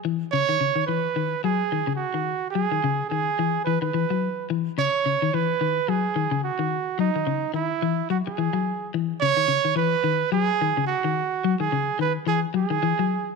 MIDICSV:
0, 0, Header, 1, 4, 480
1, 0, Start_track
1, 0, Key_signature, 5, "minor"
1, 0, Tempo, 555556
1, 1003, Time_signature, 4, 2, 24, 8
1, 11538, End_track
2, 0, Start_track
2, 0, Title_t, "Trumpet"
2, 0, Program_c, 0, 56
2, 278, Note_on_c, 0, 73, 119
2, 727, Note_off_c, 0, 73, 0
2, 749, Note_on_c, 0, 71, 89
2, 1203, Note_off_c, 0, 71, 0
2, 1244, Note_on_c, 0, 68, 95
2, 1689, Note_off_c, 0, 68, 0
2, 1694, Note_on_c, 0, 66, 74
2, 2156, Note_off_c, 0, 66, 0
2, 2165, Note_on_c, 0, 68, 91
2, 2632, Note_off_c, 0, 68, 0
2, 2672, Note_on_c, 0, 68, 90
2, 3126, Note_off_c, 0, 68, 0
2, 3152, Note_on_c, 0, 71, 90
2, 3284, Note_off_c, 0, 71, 0
2, 3297, Note_on_c, 0, 71, 73
2, 3857, Note_off_c, 0, 71, 0
2, 4136, Note_on_c, 0, 73, 106
2, 4616, Note_on_c, 0, 71, 97
2, 4629, Note_off_c, 0, 73, 0
2, 5090, Note_on_c, 0, 68, 94
2, 5103, Note_off_c, 0, 71, 0
2, 5559, Note_off_c, 0, 68, 0
2, 5564, Note_on_c, 0, 66, 78
2, 6014, Note_off_c, 0, 66, 0
2, 6050, Note_on_c, 0, 63, 85
2, 6497, Note_off_c, 0, 63, 0
2, 6521, Note_on_c, 0, 64, 84
2, 6972, Note_off_c, 0, 64, 0
2, 7001, Note_on_c, 0, 66, 73
2, 7063, Note_off_c, 0, 66, 0
2, 7141, Note_on_c, 0, 68, 72
2, 7698, Note_off_c, 0, 68, 0
2, 7956, Note_on_c, 0, 73, 118
2, 8408, Note_off_c, 0, 73, 0
2, 8441, Note_on_c, 0, 71, 98
2, 8890, Note_off_c, 0, 71, 0
2, 8923, Note_on_c, 0, 68, 102
2, 9370, Note_off_c, 0, 68, 0
2, 9390, Note_on_c, 0, 66, 81
2, 9976, Note_off_c, 0, 66, 0
2, 10025, Note_on_c, 0, 68, 83
2, 10343, Note_off_c, 0, 68, 0
2, 10377, Note_on_c, 0, 71, 83
2, 10482, Note_off_c, 0, 71, 0
2, 10610, Note_on_c, 0, 68, 89
2, 10716, Note_off_c, 0, 68, 0
2, 10858, Note_on_c, 0, 68, 90
2, 11533, Note_off_c, 0, 68, 0
2, 11538, End_track
3, 0, Start_track
3, 0, Title_t, "Clean electric guitar"
3, 0, Program_c, 1, 27
3, 42, Note_on_c, 1, 52, 78
3, 198, Note_off_c, 1, 52, 0
3, 287, Note_on_c, 1, 49, 74
3, 373, Note_off_c, 1, 49, 0
3, 421, Note_on_c, 1, 51, 63
3, 489, Note_off_c, 1, 51, 0
3, 524, Note_on_c, 1, 49, 71
3, 611, Note_off_c, 1, 49, 0
3, 653, Note_on_c, 1, 51, 65
3, 723, Note_off_c, 1, 51, 0
3, 764, Note_on_c, 1, 52, 66
3, 920, Note_off_c, 1, 52, 0
3, 1003, Note_on_c, 1, 51, 75
3, 1159, Note_off_c, 1, 51, 0
3, 1244, Note_on_c, 1, 54, 79
3, 1400, Note_off_c, 1, 54, 0
3, 1487, Note_on_c, 1, 51, 68
3, 1574, Note_off_c, 1, 51, 0
3, 1618, Note_on_c, 1, 49, 77
3, 1774, Note_off_c, 1, 49, 0
3, 1850, Note_on_c, 1, 51, 62
3, 2009, Note_off_c, 1, 51, 0
3, 2205, Note_on_c, 1, 54, 71
3, 2292, Note_off_c, 1, 54, 0
3, 2346, Note_on_c, 1, 51, 64
3, 2413, Note_off_c, 1, 51, 0
3, 2452, Note_on_c, 1, 49, 73
3, 2606, Note_off_c, 1, 49, 0
3, 2691, Note_on_c, 1, 51, 69
3, 2846, Note_off_c, 1, 51, 0
3, 2929, Note_on_c, 1, 52, 86
3, 3084, Note_off_c, 1, 52, 0
3, 3169, Note_on_c, 1, 52, 81
3, 3256, Note_off_c, 1, 52, 0
3, 3299, Note_on_c, 1, 51, 63
3, 3369, Note_off_c, 1, 51, 0
3, 3406, Note_on_c, 1, 52, 70
3, 3494, Note_off_c, 1, 52, 0
3, 3546, Note_on_c, 1, 54, 69
3, 3701, Note_off_c, 1, 54, 0
3, 3889, Note_on_c, 1, 52, 78
3, 4045, Note_off_c, 1, 52, 0
3, 4128, Note_on_c, 1, 49, 72
3, 4215, Note_off_c, 1, 49, 0
3, 4370, Note_on_c, 1, 49, 74
3, 4457, Note_off_c, 1, 49, 0
3, 4512, Note_on_c, 1, 51, 69
3, 4579, Note_off_c, 1, 51, 0
3, 4613, Note_on_c, 1, 52, 74
3, 4768, Note_off_c, 1, 52, 0
3, 4847, Note_on_c, 1, 51, 78
3, 5004, Note_off_c, 1, 51, 0
3, 5084, Note_on_c, 1, 54, 75
3, 5242, Note_off_c, 1, 54, 0
3, 5321, Note_on_c, 1, 51, 71
3, 5411, Note_off_c, 1, 51, 0
3, 5455, Note_on_c, 1, 49, 70
3, 5614, Note_off_c, 1, 49, 0
3, 5694, Note_on_c, 1, 51, 69
3, 5853, Note_off_c, 1, 51, 0
3, 6038, Note_on_c, 1, 54, 75
3, 6129, Note_off_c, 1, 54, 0
3, 6183, Note_on_c, 1, 51, 56
3, 6252, Note_off_c, 1, 51, 0
3, 6279, Note_on_c, 1, 49, 78
3, 6438, Note_off_c, 1, 49, 0
3, 6511, Note_on_c, 1, 51, 70
3, 6673, Note_off_c, 1, 51, 0
3, 6760, Note_on_c, 1, 52, 79
3, 6919, Note_off_c, 1, 52, 0
3, 6999, Note_on_c, 1, 54, 79
3, 7090, Note_off_c, 1, 54, 0
3, 7242, Note_on_c, 1, 52, 70
3, 7332, Note_off_c, 1, 52, 0
3, 7373, Note_on_c, 1, 54, 75
3, 7532, Note_off_c, 1, 54, 0
3, 7726, Note_on_c, 1, 52, 76
3, 7883, Note_off_c, 1, 52, 0
3, 7967, Note_on_c, 1, 49, 76
3, 8055, Note_off_c, 1, 49, 0
3, 8094, Note_on_c, 1, 51, 67
3, 8166, Note_off_c, 1, 51, 0
3, 8192, Note_on_c, 1, 49, 77
3, 8284, Note_off_c, 1, 49, 0
3, 8335, Note_on_c, 1, 51, 66
3, 8406, Note_off_c, 1, 51, 0
3, 8430, Note_on_c, 1, 52, 75
3, 8592, Note_off_c, 1, 52, 0
3, 8672, Note_on_c, 1, 51, 85
3, 8833, Note_off_c, 1, 51, 0
3, 8915, Note_on_c, 1, 54, 84
3, 9075, Note_off_c, 1, 54, 0
3, 9171, Note_on_c, 1, 51, 74
3, 9256, Note_off_c, 1, 51, 0
3, 9308, Note_on_c, 1, 49, 69
3, 9461, Note_off_c, 1, 49, 0
3, 9542, Note_on_c, 1, 51, 73
3, 9697, Note_off_c, 1, 51, 0
3, 9888, Note_on_c, 1, 54, 82
3, 9974, Note_off_c, 1, 54, 0
3, 10022, Note_on_c, 1, 51, 63
3, 10090, Note_off_c, 1, 51, 0
3, 10129, Note_on_c, 1, 49, 76
3, 10283, Note_off_c, 1, 49, 0
3, 10360, Note_on_c, 1, 51, 80
3, 10516, Note_off_c, 1, 51, 0
3, 10597, Note_on_c, 1, 52, 80
3, 10754, Note_off_c, 1, 52, 0
3, 10835, Note_on_c, 1, 54, 78
3, 10924, Note_off_c, 1, 54, 0
3, 10975, Note_on_c, 1, 51, 65
3, 11044, Note_off_c, 1, 51, 0
3, 11083, Note_on_c, 1, 52, 78
3, 11169, Note_off_c, 1, 52, 0
3, 11225, Note_on_c, 1, 54, 76
3, 11377, Note_off_c, 1, 54, 0
3, 11538, End_track
4, 0, Start_track
4, 0, Title_t, "Muted clean electric guitar strokes"
4, 7148, Note_on_c, 9, 29, 67
4, 7234, Note_off_c, 9, 29, 0
4, 11538, End_track
0, 0, End_of_file